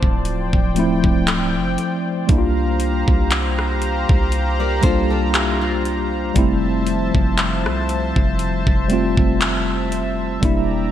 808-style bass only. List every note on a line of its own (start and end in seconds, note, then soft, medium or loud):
0.03 0.51 D1 loud
0.53 1.02 D1 loud
1.04 1.57 C1 loud
1.55 1.77 F1 loud
2.29 3.04 C2 loud
3.08 4.05 C2 loud
4.10 4.81 C2 loud
4.83 6.32 C2 loud
6.36 7.11 F1 loud
7.15 7.66 F1 loud
7.65 8.13 C2 loud
8.16 8.65 F1 loud
8.67 9.16 F1 loud
9.17 10.39 F1 loud
10.43 10.91 E1 loud